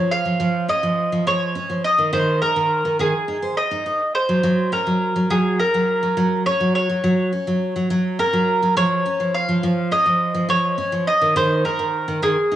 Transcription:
0.00 0.24 F3 medium
0.00 0.13 C#5 loud
0.11 0.65 F5 loud
0.25 0.38 F3 medium
0.40 0.67 F3 medium
0.68 0.82 C#4 medium
0.68 1.27 D#5 loud
0.83 1.10 F3 medium
1.12 1.25 F3 medium
1.27 1.54 F3 medium
1.27 1.84 C#5 loud
1.55 1.69 C#4 medium
1.69 1.84 F3 medium
1.84 2.13 D#5 loud
1.98 2.11 D#3 medium
2.13 2.40 D#3 loud
2.13 2.41 C5 medium
2.42 2.55 D#4 medium
2.42 2.95 A#4 medium
2.56 2.84 D#3 medium
2.85 2.98 D#3 medium
2.99 3.12 D#3 medium
2.99 3.54 G#4 medium
3.28 3.36 D#4 medium
3.42 3.56 C5 medium
3.57 4.14 D#5 medium
3.71 3.84 D#4 medium
3.86 4.00 D#4 medium
4.15 4.69 C5 loud
4.29 4.42 F#3 medium
4.43 4.71 F#3 medium
4.72 4.86 C#4 medium
4.72 5.32 A#4 medium
4.87 5.14 F#3 medium
5.16 5.29 F#3 medium
5.30 5.58 F#3 medium
5.30 5.57 G#4 medium
5.59 5.73 C#4 medium
5.59 6.42 A#4 medium
5.74 6.01 F#3 medium
6.03 6.16 F#3 medium
6.17 6.44 F#3 medium
6.46 6.59 C#4 medium
6.46 6.74 C#5 medium
6.60 6.88 F#3 medium
6.75 7.86 C#5 medium
6.90 7.02 F#3 medium
7.04 7.31 F#3 medium
7.32 7.46 C#4 medium
7.47 7.74 F#3 medium
7.76 7.89 F#3 medium
7.90 8.17 F#3 medium
8.19 8.32 C#4 medium
8.19 8.77 A#4 loud
8.33 8.60 F#3 medium
8.62 8.75 F#3 medium
8.77 9.04 F3 loud
8.77 9.36 C#5 loud
9.06 9.19 C#4 medium
9.20 9.47 F3 medium
9.34 9.88 F5 medium
9.49 9.62 F3 medium
9.63 9.90 F3 medium
9.91 10.05 C#4 medium
9.91 10.49 D#5 medium
10.06 10.33 F3 medium
10.35 10.47 F3 medium
10.49 10.76 F3 medium
10.49 11.07 C#5 loud
10.78 10.92 C#4 medium
10.92 11.07 F3 medium
11.07 11.34 D#5 loud
11.21 11.34 D#3 medium
11.36 11.63 D#3 loud
11.36 11.65 C5 medium
11.65 11.78 D#4 medium
11.65 12.24 A#4 medium
11.79 12.07 D#3 medium
12.08 12.21 D#3 medium
12.22 12.35 D#3 medium
12.22 12.56 G#4 medium
12.52 12.56 D#4 medium

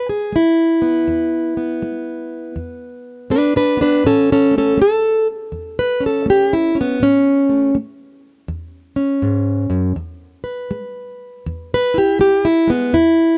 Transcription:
0.00 0.28 E2 medium
0.09 0.35 G#4 medium
0.32 1.02 G#3 medium
0.32 2.57 E4 medium
0.82 1.55 B3 soft
1.08 1.76 E2 medium
1.57 3.76 B3 soft
1.82 2.51 G#3 medium
2.56 3.25 E2 medium
3.30 3.99 G#3 medium
3.30 3.55 D4 medium
3.30 3.55 B4 medium
3.56 3.80 D4 medium
3.56 3.80 B4 medium
3.77 4.04 B3 soft
3.77 4.05 D4 medium
3.82 4.06 B4 medium
4.04 4.73 A2 medium
4.04 4.30 C#4 medium
4.04 4.30 A4 medium
4.32 4.55 C#4 medium
4.32 4.55 A4 medium
4.51 4.77 A3 soft
4.58 4.80 C#4 medium
4.58 4.80 A4 medium
4.77 5.47 A3 medium
4.82 5.27 A4 medium
5.52 6.21 E2 medium
5.79 6.03 B4 medium
6.00 6.74 C#4 soft
6.06 6.29 A4 medium
6.26 6.95 A3 medium
6.30 6.53 G4 medium
6.53 6.77 E4 medium
6.75 6.98 C#4 soft
6.81 7.03 B3 medium
7.00 7.69 A2 medium
7.00 7.76 C#4 loud
7.49 7.74 A3 soft
7.75 8.44 A3 medium
8.48 9.17 E2 medium
8.96 9.94 C#4 soft
9.22 9.69 G#2 medium
9.70 9.96 F#2 medium
9.96 10.66 E2 medium
10.44 11.74 B4 soft
10.71 11.40 G#3 medium
11.46 12.15 E2 medium
11.74 11.97 B4 loud
11.94 12.44 E4 soft
11.94 12.20 G4 medium
12.19 12.66 G#3 medium
12.19 12.45 G4 medium
12.45 12.70 E4 medium
12.67 12.91 G#3 soft
12.67 12.94 B3 medium
12.93 13.38 E2 medium
12.93 13.38 E4 medium

